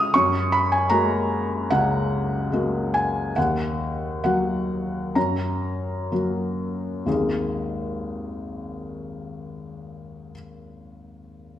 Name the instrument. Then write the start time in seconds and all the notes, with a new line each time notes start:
felt piano
Already playing: C#3 G#3 C#4 F4 C#6 D#6 F6
0.14 F#2 C#6
0.52 B5
0.72 G#5
0.90 G#3 A#3 F#4 A#5
1.70 C#2 F#5
2.52 G#3 A#3 F#4
2.94 G#5
3.36 D#2 F#5
4.24 F#3 A#3 F#4 F#5
5.15 F#2 A#5
6.12 F#3 A#3 F#4
7.06 G#1 D#2 G#3 A#3 D#4 G#4